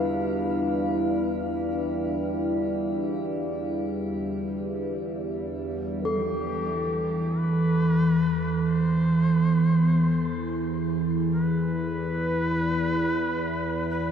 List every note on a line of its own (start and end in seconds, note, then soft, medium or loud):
0.00 6.05 E2 medium
0.00 6.19 G3 medium
0.00 6.07 D4 medium
0.00 6.07 F4 medium
0.00 6.08 B4 medium
0.00 6.08 E5 medium
0.00 6.08 F5 medium
6.05 14.12 E2 medium
6.05 14.12 E3 medium
6.05 7.39 G4 medium
6.05 14.12 A4 medium
7.38 8.71 B4 loud
8.70 11.02 C5 loud
11.31 11.42 A#4 loud
11.42 13.86 B4 loud
13.90 14.12 B4 medium